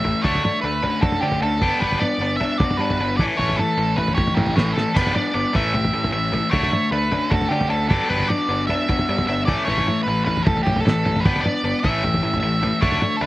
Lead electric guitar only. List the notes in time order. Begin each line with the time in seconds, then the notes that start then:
Already playing: E5
0.23 C#5
0.61 B4
1.02 A4
1.21 G4
1.42 A4
1.80 B4
1.99 D5
2.37 E5
2.58 D5
2.77 B4
3.17 D5
3.37 C#5
3.57 A4
3.96 B4
4.15 C#5
4.35 G4
4.55 A4
4.96 B4
5.15 D5
5.34 D5
5.56 E5
6.12 E5
6.51 C#5
6.92 B4
7.30 A4
7.49 G4
7.70 A4
7.89 A4
8.09 B4
8.28 D5
8.67 E5
9.27 E5
9.45 D5
9.65 C#5
10.03 B4
10.25 B4
10.43 A4
10.63 G4
10.80 A4
11.20 B4
11.41 D5
11.80 E5
12.40 E5
12.81 C#5
13.17 A4
13.21 B4